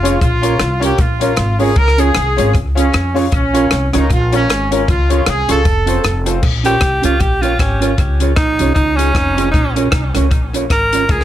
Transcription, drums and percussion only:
0.05 closed hi-hat medium
0.21 kick loud
0.21 closed hi-hat medium
0.43 closed hi-hat medium
0.60 cross-stick loud
0.60 closed hi-hat medium
0.82 closed hi-hat medium
0.98 kick loud
0.98 closed hi-hat medium
1.21 closed hi-hat medium
1.36 cross-stick loud
1.36 closed hi-hat medium
1.60 open hi-hat medium
1.76 kick loud
1.76 closed hi-hat medium
1.88 cross-stick medium
1.98 closed hi-hat medium
2.15 cross-stick loud
2.15 closed hi-hat medium
2.38 closed hi-hat medium
2.55 kick loud
2.55 closed hi-hat medium
2.77 closed hi-hat medium
2.93 cross-stick loud
2.93 closed hi-hat medium
3.16 open hi-hat medium
3.32 kick loud
3.32 closed hi-hat medium
3.55 closed hi-hat medium
3.71 cross-stick loud
3.71 closed hi-hat medium
3.93 cross-stick medium
3.93 closed hi-hat medium
4.10 kick loud
4.10 closed hi-hat medium
4.32 closed hi-hat medium
4.50 cross-stick loud
4.50 closed hi-hat medium
4.72 closed hi-hat medium
4.88 kick loud
4.88 closed hi-hat medium
5.10 closed hi-hat medium
5.26 cross-stick loud
5.26 closed hi-hat medium
5.49 closed hi-hat medium
5.65 kick loud
5.65 closed hi-hat medium
5.87 closed hi-hat medium
6.04 cross-stick loud
6.04 closed hi-hat medium
6.26 closed hi-hat medium
6.43 kick loud
6.43 crash loud
6.65 closed hi-hat medium
6.81 kick loud
6.81 cross-stick loud
6.81 closed hi-hat medium
7.03 closed hi-hat medium
7.20 kick loud
7.20 closed hi-hat medium
7.43 closed hi-hat medium
7.59 kick loud
7.59 cross-stick loud
7.59 closed hi-hat medium
7.82 closed hi-hat medium
7.98 kick loud
7.98 closed hi-hat medium
8.20 closed hi-hat medium
8.36 kick loud
8.36 cross-stick loud
8.36 closed hi-hat medium
8.59 closed hi-hat medium
8.76 kick loud
8.76 closed hi-hat medium
8.99 closed hi-hat medium
9.15 kick loud
9.15 cross-stick loud
9.15 closed hi-hat medium
9.38 closed hi-hat medium
9.54 kick loud
9.54 closed hi-hat medium
9.76 closed hi-hat medium
9.92 kick loud
9.92 cross-stick loud
9.92 closed hi-hat medium
10.15 cross-stick medium
10.15 closed hi-hat medium
10.31 kick loud
10.31 closed hi-hat medium
10.54 closed hi-hat medium
10.70 kick loud
10.70 cross-stick loud
10.70 closed hi-hat medium
10.93 closed hi-hat medium
11.09 kick loud
11.09 closed hi-hat medium
11.21 cross-stick medium

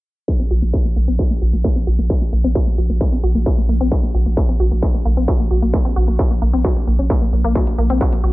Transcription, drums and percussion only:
0.28 kick loud
0.74 kick loud
1.19 kick loud
1.64 kick loud
2.10 kick loud
2.55 kick loud
3.01 kick loud
3.46 kick loud
3.92 kick loud
4.37 kick loud
4.83 kick loud
5.28 kick loud
5.74 kick loud
6.19 kick loud
6.65 kick loud
7.10 kick loud
7.55 kick loud
7.55 closed hi-hat medium
7.67 closed hi-hat medium
7.90 closed hi-hat medium
8.01 kick loud
8.01 closed hi-hat medium
8.12 closed hi-hat medium

